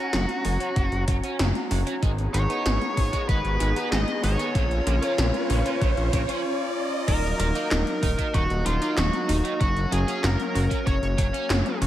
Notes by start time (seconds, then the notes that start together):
Already playing: C#4 F#4 A#5, riser
0.13 F#1 C#3 F#3, snare, closed hi-hat
0.29 closed hi-hat
0.45 F#1 C#3 F#4, open hi-hat
0.60 F#3 C#4, closed hi-hat
0.76 F#1 C#3 F#3, kick, closed hi-hat
0.92 F#1, closed hi-hat
1.08 F#1 C#3 F#3, kick, closed hi-hat
1.24 C#4, closed hi-hat
1.39 F#1 C#3 F#3, snare, closed hi-hat
1.55 closed hi-hat
1.71 F#1 C#3 F#4, open hi-hat
1.87 F#3 C#4, closed hi-hat
2.03 G#1 D#3 G#3 B3 G#4, kick, closed hi-hat
2.18 closed hi-hat
2.34 G#1 D#3 G#3 C#5, closed hi-hat
2.50 B3 D#4, closed hi-hat
2.66 G#1 D#3 G#3, snare, closed hi-hat
2.82 closed hi-hat
2.97 G#1 D#3 G#4, kick, open hi-hat
3.13 G#3 B3, kick, closed hi-hat
3.29 G#1 D#3 G#3 B4, kick, closed hi-hat
3.45 G#1, closed hi-hat
3.60 G#1 D#3 G#3, closed hi-hat
3.76 B3 D#4, closed hi-hat
3.92 G#1 D#3 G#3 D#5, snare, closed hi-hat
4.08 closed hi-hat
4.23 G#1 D#3 G#4 C#5, open hi-hat
4.39 G#3 B3, closed hi-hat
4.55 A#1 A#2 C#3 C#4 F4, kick, closed hi-hat
4.71 closed hi-hat
4.87 A#1 A#2 C#3, closed hi-hat
5.02 F3 C#4, closed hi-hat
5.18 A#1 A#2 C#3, snare, closed hi-hat
5.34 closed hi-hat
5.50 A#1 C#3 A#3, open hi-hat
5.66 A#2 C#4, closed hi-hat
5.81 A#1 A#2 C#3, kick, closed hi-hat
5.97 A#1, closed hi-hat
6.13 A#1 A#2 C#3, kick, closed hi-hat
6.29 F3 C#4, closed hi-hat
7.08 D#1 D#3 F#3 A#3 D#4 A#4, kick, closed hi-hat, crash
7.24 closed hi-hat
7.39 D#1 D#3 A#4, closed hi-hat
7.55 A#3 D#4, closed hi-hat
7.71 D#1 D#3, snare, clap, closed hi-hat
7.87 closed hi-hat
8.03 D#1 D#3 D#4, kick, open hi-hat
8.18 D#3 D#4, kick, closed hi-hat
8.34 D#1 D#3 F#4, kick, closed hi-hat
8.50 D#1, closed hi-hat
8.66 D#1 D#3 F4, closed hi-hat
8.81 A#3 D#4, closed hi-hat
8.97 D#1 D#3 F#4, snare, clap, closed hi-hat
9.13 closed hi-hat
9.29 D#1 D#3 D#4, open hi-hat
9.44 D#3 D#4, closed hi-hat
9.60 F#1 C#3 F#3 C#4 F#4, kick, closed hi-hat
9.77 closed hi-hat
9.92 F#1 C#3 F#3 G#4, closed hi-hat
10.08 C#4, closed hi-hat
10.23 F#1 C#3 F#3 A#4, snare, clap, closed hi-hat
10.40 closed hi-hat
10.55 F#1 C#3 F#4, open hi-hat
10.70 F#3 C#4, kick, closed hi-hat
10.86 F#1 C#3 F#3 C#5, kick, closed hi-hat
11.03 F#1, closed hi-hat
11.18 F#1 C#3 F#3, kick, closed hi-hat
11.34 C#4, closed hi-hat
11.50 F#1 C#3 F#3, snare, clap, closed hi-hat
11.66 closed hi-hat
11.81 F#1 C#3 F#4, open hi-hat